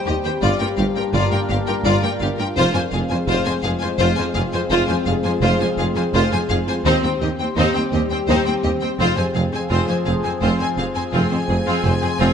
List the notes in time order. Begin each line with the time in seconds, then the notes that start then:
Already playing: G3 C4 G4 C5
0.06 D#2 G4 D#5
0.24 D#2 G4 C5 G5
0.42 G1 G2 A#3 D4 F4 A#4 D5
0.60 G2 F4 A#4 G5
0.78 G1 G2 F4 G4 F5
0.95 G2 F4 A#4 G5
1.13 G1 G2 F4 D5
1.31 G2 F4 A#4 G5
1.49 G1 G2 F4 G4 F5
1.67 G2 F4 A#4 G5
1.85 G1 G2 F4 D5
2.03 G2 F4 A#4 G5
2.21 G1 G2 F4 G4 F5
2.38 G2 F4 A#4 G5
2.56 F1 F2 G#3 C4 F4 G#4 C5
2.74 F2 F4 C5 G#5
2.92 F1 F2 F4 G#4 F5
3.10 F2 F4 C5 G#5
3.28 F1 F2 F4 C5
3.46 F2 F4 C5 G#5
3.63 F1 F2 F4 G#4 F5
3.81 F2 F4 C5 G#5
3.99 F1 F2 F4 C5
4.17 F2 F4 C5 G#5
4.35 F1 F2 F4 G#4 F5
4.53 F2 F4 C5 G#5
4.71 F1 F2 F4 C5
4.89 F2 F4 C5 G#5
5.06 F1 F2 F4 G#4 F5
5.24 F2 F4 C5 G#5
5.42 F1 F2 F4 C5
5.60 F2 F4 C5 G#5
5.78 F1 F2 F4 G#4 F5
5.96 F2 F4 C5 G#5
6.14 F1 F2 F4 C5
6.32 F2 F4 C5 G#5
6.49 F1 F2 F4 G#4 F5
6.67 F2 F4 C5 G#5
6.84 D#2 G3 C4 D#4 G4 C5
7.03 D#2 C4 C5 G5
7.21 D#2 C4 G4 D#5
7.39 D#2 C4 C5 G5
7.56 D#2 C4 D#4 C5
7.75 D#2 C4 C5 G5
7.92 D#2 C4 G4 D#5
8.10 D#2 C4 C5 G5
8.28 D#2 C4 D#4 C5
8.45 D#2 C4 C5 G5
8.63 D#2 C4 G4 D#5
8.81 D#2 C4 C5 G5
8.99 F1 F2 F3 C4 F4 G#4 C5
9.17 F2 C4 C5 G#5
9.35 F1 F2 C4 G#4 F5
9.52 F2 C4 C5 G#5
9.69 F1 F2 C4 F4 C5
9.88 F2 C4 C5 G#5
10.06 F1 F2 C4 G#4 F5
10.24 F2 C4 C5 G#5
10.42 F1 F2 C4 F4 C5
10.60 F2 C4 C5 G#5
10.77 F1 F2 C4 G#4 F5
10.95 F2 C4 C5 G#5
11.12 F1 F2 F3 C4 F4 G#4 C5 G#5
11.30 F2 C4 C5
11.48 F1 F2 C4 G#4
11.66 F2 C4 F4
11.84 F1 F2 C4 C5
12.02 F2 C4 G#4
12.19 F1 F2 C4 F4